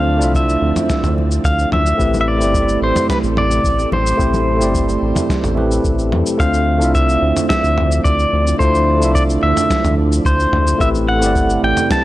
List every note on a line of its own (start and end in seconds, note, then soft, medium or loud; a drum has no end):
0.00 0.22 D2 medium
0.00 1.96 D3 medium
0.00 1.96 F3 medium
0.00 0.16 A3 medium
0.00 0.17 C4 medium
0.00 1.96 C4 medium
0.00 0.17 D4 medium
0.00 0.21 E4 medium
0.00 0.22 F4 medium
0.00 0.18 C5 medium
0.00 1.96 D5 medium
0.00 0.24 E5 medium
0.00 0.36 F5 loud
0.17 0.57 C2 medium
0.17 1.95 A3 medium
0.17 1.95 D4 medium
0.17 1.96 E4 medium
0.22 1.97 F4 medium
0.22 1.98 E5 loud
0.22 cabasa medium
0.34 1.14 E5 medium
0.34 kick medium
0.34 high conga medium
0.34 cabasa medium
0.49 cabasa soft
0.62 0.73 D2 loud
0.76 mid tom medium
0.76 high conga medium
0.76 cabasa medium
0.90 kick loud
0.90 snare medium
0.90 cabasa medium
1.03 1.40 D2 loud
1.03 mid tom medium
1.03 cabasa soft
1.18 high conga medium
1.31 cabasa medium
1.44 1.66 D2 medium
1.44 1.73 F5 medium
1.44 kick loud
1.44 cabasa medium
1.59 cabasa soft
1.72 1.94 D2 loud
1.72 2.20 E5 loud
1.72 mid tom medium
1.72 high conga medium
1.86 cabasa medium
1.97 2.42 A1 medium
1.97 6.36 C3 medium
1.97 2.36 A3 medium
1.97 6.36 A3 medium
1.97 2.37 C4 medium
1.97 2.37 E4 medium
1.97 2.38 G4 medium
1.97 6.36 G4 medium
1.97 6.36 A4 medium
1.97 2.38 B4 loud
1.97 kick loud
1.97 cabasa soft
2.14 high conga medium
2.14 cabasa soft
2.21 2.27 E5 medium
2.28 2.79 D5 medium
2.37 2.77 G1 medium
2.37 4.15 A3 medium
2.37 4.16 C4 medium
2.37 4.16 E4 medium
2.37 cabasa medium
2.42 4.17 G4 medium
2.42 4.18 D5 medium
2.54 kick medium
2.54 high conga medium
2.54 cabasa medium
2.69 cabasa soft
2.82 2.93 A1 medium
2.82 3.09 C5 medium
2.96 mid tom medium
2.96 high conga medium
2.96 cabasa medium
3.09 3.17 B4 medium
3.09 kick loud
3.09 snare medium
3.09 cabasa medium
3.24 3.60 A1 loud
3.24 cabasa soft
3.37 3.89 D5 loud
3.37 mid tom medium
3.37 high conga medium
3.51 cabasa medium
3.64 3.86 A1 medium
3.64 kick medium
3.64 cabasa medium
3.79 cabasa soft
3.92 4.14 A1 loud
3.92 5.54 C5 medium
3.92 high conga medium
4.07 cabasa medium
4.17 4.62 A1 medium
4.17 4.56 A3 medium
4.17 4.57 C4 medium
4.17 4.57 E4 medium
4.17 4.58 G4 medium
4.17 4.58 C5 loud
4.17 kick loud
4.17 cabasa soft
4.34 high conga medium
4.34 cabasa soft
4.57 5.52 A3 medium
4.57 5.53 C4 medium
4.57 5.54 E4 medium
4.61 4.97 G1 medium
4.61 5.55 G4 medium
4.61 5.56 D5 medium
4.61 cabasa medium
4.74 kick medium
4.74 high conga medium
4.74 cabasa medium
4.89 cabasa soft
5.02 5.13 A1 medium
5.15 mid tom medium
5.15 high conga medium
5.15 low conga medium
5.15 cabasa medium
5.30 kick loud
5.30 snare medium
5.30 cabasa medium
5.44 5.80 A1 loud
5.44 mid tom medium
5.44 cabasa soft
5.55 5.66 A3 medium
5.55 5.67 C4 medium
5.55 5.67 E4 medium
5.55 5.68 G4 medium
5.55 5.68 B4 loud
5.55 high conga medium
5.71 cabasa medium
5.85 6.14 A1 medium
5.85 kick loud
5.85 cabasa soft
5.99 cabasa soft
6.12 6.23 E2 loud
6.12 mid tom medium
6.12 high conga medium
6.26 cabasa medium
6.38 6.82 D2 medium
6.38 10.76 D3 medium
6.38 10.76 F3 medium
6.38 6.77 A3 medium
6.38 6.78 C4 medium
6.38 8.58 C4 medium
6.38 6.77 D4 medium
6.38 6.78 F4 medium
6.38 6.79 C5 loud
6.38 10.77 D5 medium
6.38 6.94 F5 loud
6.38 kick loud
6.38 cabasa medium
6.54 cabasa soft
6.78 7.18 C2 medium
6.78 8.55 A3 medium
6.78 8.56 D4 medium
6.78 8.57 E4 medium
6.78 cabasa medium
6.83 8.58 F4 medium
6.83 8.58 E5 loud
6.95 7.48 E5 loud
6.95 kick medium
6.95 cabasa medium
7.09 cabasa soft
7.22 7.33 D2 loud
7.37 mid tom medium
7.37 cabasa medium
7.49 8.01 E5 loud
7.49 kick loud
7.49 snare medium
7.49 cabasa medium
7.64 8.00 D2 loud
7.64 cabasa soft
7.78 mid tom medium
7.92 cabasa medium
8.04 8.27 D2 medium
8.04 8.56 D5 medium
8.04 kick loud
8.04 cabasa medium
8.19 cabasa soft
8.33 8.54 D2 medium
8.47 cabasa medium
8.58 9.04 D2 medium
8.58 8.97 A3 medium
8.58 8.98 D4 medium
8.58 10.79 D4 medium
8.58 8.98 E4 medium
8.58 8.99 F4 medium
8.58 9.11 C5 medium
8.58 8.99 C5 loud
8.58 kick loud
8.58 cabasa medium
8.75 cabasa soft
8.98 10.75 A3 medium
8.98 10.76 D4 medium
8.98 10.77 E4 medium
9.02 9.38 C2 medium
9.02 10.78 F4 medium
9.02 10.79 E5 medium
9.02 cabasa medium
9.15 9.22 D5 medium
9.15 kick loud
9.15 cabasa medium
9.30 cabasa soft
9.43 9.54 D2 loud
9.43 9.94 E5 medium
9.57 mid tom medium
9.57 cabasa medium
9.70 kick loud
9.70 snare medium
9.70 cabasa medium
9.84 10.20 D2 loud
9.84 mid tom medium
9.84 cabasa soft
10.12 cabasa medium
10.25 10.47 D2 medium
10.25 10.82 C5 medium
10.25 kick loud
10.25 cabasa medium
10.40 cabasa soft
10.53 10.74 D2 loud
10.53 mid tom medium
10.67 cabasa medium
10.79 11.23 A1 medium
10.79 12.04 C3 medium
10.79 11.18 A3 loud
10.79 12.04 A3 medium
10.79 11.18 C4 medium
10.79 11.19 E4 medium
10.79 12.04 G4 medium
10.79 11.19 G4 medium
10.79 12.04 A4 medium
10.79 11.19 B4 loud
10.79 10.88 E5 loud
10.79 kick loud
10.79 cabasa medium
10.95 cabasa soft
11.08 11.64 F#5 loud
11.19 11.58 G1 medium
11.19 12.04 A3 medium
11.19 12.04 C4 medium
11.19 12.04 E4 medium
11.19 cabasa medium
11.23 12.04 G4 medium
11.23 12.04 D5 loud
11.35 kick loud
11.35 cabasa medium
11.50 cabasa soft
11.63 11.74 A1 loud
11.63 11.89 G5 loud
11.77 mid tom medium
11.77 cabasa medium
11.90 12.04 A5 loud
11.90 kick loud
11.90 snare medium
11.90 cabasa medium